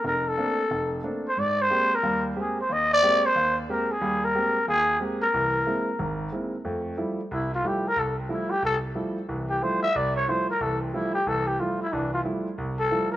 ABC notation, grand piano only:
X:1
M:4/4
L:1/8
Q:"Swing" 1/4=182
K:Ablyd
V:1 name="Grand piano" clef=bass
F,,,2 [=A,B,CD] z F,,,2 [A,B,CD] z | A,,2 [A,B,CG] z [E,,G,]2 [A,B,CG] z | E,,2 [A,B,CG] z E,,2 [A,B,CG] z | [E,,G,]2 [A,B,CG] z E,,2 [A,B,CG] z |
[C,,=E,]2 [^G,B,C=E] z ^G,,,2 [G,B,CE] z | [K:F] [F,,A,]2 [F,G,A,E] z C,,2 [F,G,A,E] z | C,,2 [F,G,A,E] z C,,2 [F,G,A,E] z | [C,,E,]2 [F,G,A,E] z C,,2 [F,G,A,E] z |
[C,,E,]2 [F,G,A,E] z [C,,E,]2 [F,G,A,E] z | [C,,E,]2 [F,G,A,E] z C,,2 [F,G,A,E] z |]